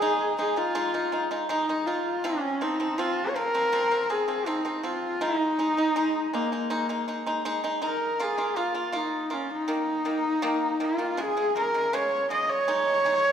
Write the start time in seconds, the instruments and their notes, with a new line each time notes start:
Already playing: horsehead fiddle G#4
0.02 pipa G#3 D#4
0.38 pipa G#3 D#4, horsehead fiddle G#4
0.56 pipa G#3 D#4, horsehead fiddle F4
0.75 pipa G#3 D#4
0.94 pipa G#3 D#4
1.12 pipa G#3 D#4
1.31 pipa G#3 D#4
1.49 pipa G#3 D#4, horsehead fiddle D#4
1.69 pipa G#3 D#4
1.87 pipa G#3 D#4, horsehead fiddle F4
2.24 pipa F3 C4, horsehead fiddle C#4
2.61 pipa F3 C4, horsehead fiddle D#4
2.80 pipa F3 C4
2.98 pipa F3 C4, horsehead fiddle F4
3.28 horsehead fiddle C#5
3.36 pipa F3 C4, horsehead fiddle A#4
3.54 pipa F3 C4
3.72 pipa F3 C4
3.91 pipa F3 C4
4.10 pipa F3 C4, horsehead fiddle G#4
4.28 pipa F3 C4
4.46 pipa F3 C4, horsehead fiddle D#4
4.65 pipa F3 C4
4.83 pipa F3 C4, horsehead fiddle F4
5.21 pipa G#3 D#4, horsehead fiddle D#4
5.59 pipa G#3 D#4
5.77 pipa G#3 D#4
5.96 pipa G#3 D#4
6.33 pipa G#3 D#4, horsehead fiddle A#3
6.52 pipa G#3 D#4
6.70 pipa G#3 D#4
6.89 pipa G#3 D#4
7.08 pipa G#3 D#4
7.26 pipa G#3 D#4
7.45 pipa G#3 D#4
7.64 pipa G#3 D#4
7.82 pipa G#3 D#4, horsehead fiddle A#4
8.19 pipa A#3 F4, horsehead fiddle G#4
8.38 pipa A#3 F4
8.56 pipa A#3 F4, horsehead fiddle F4
8.74 pipa A#3 F4
8.92 pipa A#3 F4, horsehead fiddle D#4
9.30 pipa A#3 F4, horsehead fiddle C#4
9.52 horsehead fiddle D#4
9.68 pipa D#3 A#3
10.05 pipa D#3 A#3
10.42 pipa D#3 A#3
10.80 pipa D#3 A#3, horsehead fiddle F4
10.98 pipa D#3 A#3
11.17 pipa C#3 G#3, horsehead fiddle G#4
11.37 pipa C#3 G#3
11.56 pipa C#3 G#3, horsehead fiddle A#4
11.74 pipa C#3 G#3
11.93 pipa C#3 G#3, horsehead fiddle C#5
12.30 pipa C#3 G#3, horsehead fiddle D#5
12.50 horsehead fiddle C#5
12.68 pipa G#3 D#4
13.05 pipa G#3 D#4